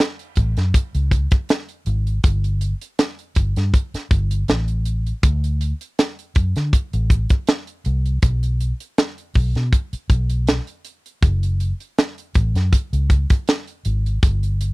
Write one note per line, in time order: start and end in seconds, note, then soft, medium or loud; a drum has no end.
0.00 snare loud
0.00 closed hi-hat medium
0.19 closed hi-hat soft
0.36 0.54 A1 medium
0.36 kick medium
0.36 closed hi-hat medium
0.57 0.72 F#2 medium
0.57 snare soft
0.57 closed hi-hat soft
0.74 muted fingered electric bass stroke soft
0.74 kick medium
0.74 closed hi-hat medium
0.95 1.26 C#2 medium
0.95 closed hi-hat medium
1.11 kick medium
1.11 closed hi-hat medium
1.31 kick medium
1.31 closed hi-hat soft
1.49 snare loud
1.49 closed hi-hat medium
1.69 closed hi-hat soft
1.86 2.18 G#1 medium
1.86 closed hi-hat medium
2.07 closed hi-hat soft
2.24 2.72 G1 loud
2.24 kick loud
2.24 closed hi-hat medium
2.44 closed hi-hat soft
2.61 closed hi-hat medium
2.81 closed hi-hat medium
2.99 snare loud
2.99 closed hi-hat medium
3.19 closed hi-hat soft
3.35 3.53 G1 medium
3.35 kick medium
3.35 closed hi-hat medium
3.56 3.71 G2 medium
3.56 snare soft
3.56 closed hi-hat soft
3.74 kick medium
3.74 closed hi-hat medium
3.94 muted fingered electric bass stroke soft
3.94 snare soft
3.94 closed hi-hat medium
4.11 4.42 G1 loud
4.11 kick medium
4.11 closed hi-hat medium
4.31 closed hi-hat medium
4.48 5.11 A1 loud
4.48 snare loud
4.48 closed hi-hat medium
4.68 closed hi-hat medium
4.85 closed hi-hat medium
5.07 closed hi-hat soft
5.23 5.72 D2 loud
5.23 kick loud
5.23 closed hi-hat medium
5.44 closed hi-hat soft
5.61 closed hi-hat medium
5.81 closed hi-hat medium
5.99 snare loud
5.99 closed hi-hat medium
6.19 closed hi-hat soft
6.35 6.53 F#2 medium
6.35 kick medium
6.35 closed hi-hat medium
6.56 6.71 D3 medium
6.56 snare soft
6.56 closed hi-hat soft
6.73 muted fingered electric bass stroke soft
6.73 kick medium
6.73 closed hi-hat medium
6.93 7.25 A1 medium
6.93 closed hi-hat medium
7.10 kick medium
7.10 closed hi-hat medium
7.29 kick medium
7.29 closed hi-hat medium
7.47 snare loud
7.47 closed hi-hat medium
7.67 closed hi-hat soft
7.85 8.17 C2 loud
7.85 closed hi-hat medium
8.06 closed hi-hat soft
8.22 8.71 B1 loud
8.22 kick loud
8.22 closed hi-hat medium
8.43 closed hi-hat soft
8.61 closed hi-hat medium
8.80 closed hi-hat medium
8.98 snare loud
8.98 closed hi-hat medium
9.18 closed hi-hat soft
9.34 9.52 B1 medium
9.34 kick medium
9.34 open hi-hat soft
9.55 9.70 B2 medium
9.55 snare soft
9.55 closed hi-hat soft
9.73 kick medium
9.73 closed hi-hat medium
9.93 muted fingered electric bass stroke soft
9.93 closed hi-hat medium
10.10 10.58 B1 medium
10.10 kick medium
10.10 closed hi-hat medium
10.30 closed hi-hat medium
10.47 snare loud
10.47 closed hi-hat medium
10.67 closed hi-hat soft
10.85 closed hi-hat medium
11.06 closed hi-hat soft
11.23 11.71 F#1 loud
11.23 kick loud
11.23 closed hi-hat medium
11.43 closed hi-hat soft
11.60 closed hi-hat medium
11.80 closed hi-hat soft
11.98 snare loud
11.98 closed hi-hat medium
12.18 closed hi-hat soft
12.34 12.52 A1 medium
12.34 kick medium
12.34 closed hi-hat medium
12.55 12.70 F#2 medium
12.55 snare soft
12.55 closed hi-hat soft
12.73 kick medium
12.73 closed hi-hat medium
12.93 13.24 C#2 medium
12.93 closed hi-hat medium
13.10 kick medium
13.10 closed hi-hat medium
13.30 kick medium
13.30 closed hi-hat medium
13.48 snare loud
13.48 closed hi-hat medium
13.67 closed hi-hat soft
13.85 14.17 G#1 medium
13.85 closed hi-hat medium
14.06 closed hi-hat soft
14.23 14.71 G1 medium
14.23 kick loud
14.23 closed hi-hat medium
14.43 closed hi-hat soft
14.61 closed hi-hat medium